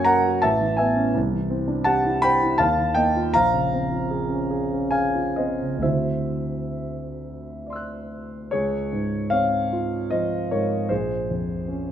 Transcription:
0.00 0.39 F#2 medium
0.00 0.45 F#3 soft
0.00 0.45 A#3 medium
0.00 0.44 C#4 soft
0.00 0.26 F#4 medium
0.00 0.44 C#5 medium
0.00 0.45 G#5 medium
0.05 0.35 A#4 medium
0.05 0.39 F#5 medium
0.05 0.41 A#5 loud
0.26 0.43 F#4 soft
0.42 1.14 A1 medium
0.42 0.76 E5 medium
0.42 0.78 A5 medium
0.61 0.90 E3 soft
0.77 1.08 B3 medium
0.77 1.13 E5 medium
0.77 1.14 G#5 medium
0.96 1.15 C#4 soft
1.14 2.55 C2 medium
1.32 1.62 E3 soft
1.50 1.80 C4 soft
1.68 1.97 D4 soft
1.84 2.16 G4 medium
1.84 2.20 F#5 medium
1.84 2.22 A5 loud
2.05 2.34 E4 soft
2.22 2.53 C5 medium
2.22 2.57 G5 medium
2.22 2.59 B5 loud
2.43 2.60 E4 soft
2.58 3.31 D#2 medium
2.58 2.94 F5 medium
2.58 2.96 A5 loud
2.78 3.07 D#3 soft
2.95 3.26 A#3 soft
2.95 3.31 D#5 medium
2.95 3.33 G5 medium
3.16 3.34 F4 soft
3.34 5.79 A#1 medium
3.34 4.88 F5 medium
3.34 4.92 A#5 loud
3.54 3.83 C#3 soft
3.73 4.03 C4 soft
3.91 4.22 F4 soft
4.11 4.42 G#4 soft
4.30 4.62 C#4 soft
4.51 4.84 G#4 soft
4.73 5.06 C#4 soft
4.91 5.27 G#4 soft
4.91 5.33 F5 medium
4.91 5.35 G#5 medium
5.15 5.50 F4 soft
5.36 5.74 C4 soft
5.36 5.80 C5 medium
5.36 5.82 D#5 medium
5.62 5.84 C#3 soft
5.78 8.47 D2 soft
5.78 8.48 D3 soft
5.78 8.48 C4 soft
5.78 8.49 E4 soft
5.78 8.11 E5 medium
5.83 8.49 F#4 soft
5.83 8.07 C5 soft
7.67 8.49 D5 soft
7.67 8.50 C6 soft
7.73 8.52 E6 soft
7.73 8.53 F#6 soft
8.51 10.86 C#2 soft
8.51 9.28 G#4 medium
8.51 9.30 C#5 medium
8.93 9.56 G#2 soft
9.30 9.96 C4 soft
9.30 10.08 C#5 medium
9.30 10.11 F5 medium
9.73 10.36 F4 soft
10.11 10.74 F3 soft
10.11 10.48 C5 medium
10.11 10.50 D#5 medium
10.51 10.91 G#2 soft
10.51 10.88 A#4 medium
10.51 10.90 C#5 medium
10.89 11.92 A#1 soft
10.89 11.92 G#4 medium
10.89 11.92 C5 medium
11.31 11.91 F2 soft
11.68 11.92 C#4 soft

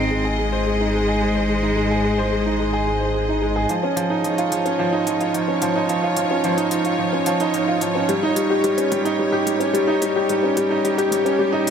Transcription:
0.00 3.67 G#1 medium
0.00 0.11 G#3 medium
0.00 0.41 C4 medium
0.00 0.10 D#4 medium
0.00 1.05 F4 medium
0.00 0.24 G#4 medium
0.00 5.15 G#4 medium
0.00 0.52 C5 medium
0.00 5.28 D#5 medium
0.11 0.24 G#3 medium
0.24 0.38 G#4 medium
0.39 0.52 G#3 medium
0.39 3.14 G#3 medium
0.52 0.66 C5 medium
0.57 3.69 C5 medium
0.67 0.80 G#3 medium
0.81 0.93 D#4 medium
0.94 1.07 G#3 medium
1.08 1.16 G#4 medium
1.22 1.35 G#3 medium
1.35 1.48 C5 medium
1.49 1.62 G#3 medium
1.63 1.76 D#4 medium
1.77 1.90 G#3 medium
1.91 2.04 G#4 medium
2.04 2.17 G#3 medium
2.18 2.31 C5 medium
2.32 2.45 G#3 medium
2.46 2.59 D#4 medium
2.60 2.72 G#3 medium
2.73 2.81 G#4 medium
2.87 3.00 G#3 medium
3.01 3.14 C5 medium
3.14 3.27 G#3 medium
3.29 3.41 D#4 medium
3.42 3.55 G#3 medium
3.56 3.69 G#4 medium
3.69 3.82 F3 medium
3.69 closed hi-hat soft
3.83 3.96 C#4 medium
3.95 4.10 F3 medium
3.95 11.70 D#4 medium
3.95 closed hi-hat medium
4.10 4.23 D#4 medium
4.15 9.84 F4 medium
4.23 4.37 F3 medium
4.23 11.70 C#5 medium
4.23 closed hi-hat soft
4.38 4.51 F4 medium
4.38 closed hi-hat soft
4.52 4.65 F3 medium
4.52 closed hi-hat medium
4.65 4.79 C#4 medium
4.65 closed hi-hat soft
4.79 4.92 F3 medium
4.93 5.01 D#4 medium
5.07 5.20 F3 medium
5.07 closed hi-hat medium
5.20 5.34 F4 medium
5.20 closed hi-hat soft
5.34 5.47 F3 medium
5.34 closed hi-hat soft
5.48 5.61 C#4 medium
5.62 5.75 F3 medium
5.62 closed hi-hat medium
5.76 5.89 D#4 medium
5.89 6.02 F3 medium
5.89 closed hi-hat soft
6.03 6.16 F4 medium
6.16 6.30 F3 medium
6.16 closed hi-hat medium
6.31 6.44 C#4 medium
6.44 6.57 F3 medium
6.44 closed hi-hat soft
6.58 6.66 D#4 medium
6.58 closed hi-hat soft
6.71 6.85 F3 medium
6.71 closed hi-hat medium
6.85 6.99 F4 medium
6.85 closed hi-hat soft
6.99 7.12 F3 medium
7.13 7.26 C#4 medium
7.26 7.40 F3 medium
7.26 closed hi-hat medium
7.40 7.54 D#4 loud
7.40 closed hi-hat soft
7.54 7.68 F3 medium
7.54 closed hi-hat soft
7.68 7.81 F4 medium
7.81 7.95 F3 medium
7.81 closed hi-hat medium
7.95 8.09 C#4 medium
8.09 8.22 G3 medium
8.09 closed hi-hat soft
8.23 8.31 D#4 medium
8.36 8.50 G3 medium
8.36 closed hi-hat medium
8.43 11.70 G4 medium
8.50 8.64 G4 medium
8.64 8.77 G3 medium
8.64 closed hi-hat soft
8.78 8.91 C#4 medium
8.78 closed hi-hat soft
8.92 9.05 G3 loud
8.92 closed hi-hat medium
9.05 9.19 D#4 medium
9.05 closed hi-hat soft
9.19 9.32 G3 medium
9.32 9.46 G4 loud
9.46 9.60 G3 medium
9.46 closed hi-hat medium
9.60 9.74 C#4 medium
9.60 closed hi-hat soft
9.73 9.87 G3 medium
9.73 closed hi-hat soft
9.87 9.96 D#4 medium
10.02 10.15 G3 medium
10.02 closed hi-hat medium
10.16 10.29 G4 medium
10.29 10.43 G3 medium
10.29 closed hi-hat soft
10.43 10.57 C#4 medium
10.57 10.70 G3 medium
10.57 closed hi-hat medium
10.71 10.84 D#4 medium
10.84 10.98 G3 medium
10.84 closed hi-hat soft
10.98 11.11 G4 medium
10.98 closed hi-hat soft
11.11 11.25 G3 medium
11.11 closed hi-hat medium
11.25 11.39 C#4 medium
11.25 closed hi-hat soft
11.39 11.52 G3 medium
11.52 11.61 D#4 loud
11.67 11.70 G3 medium

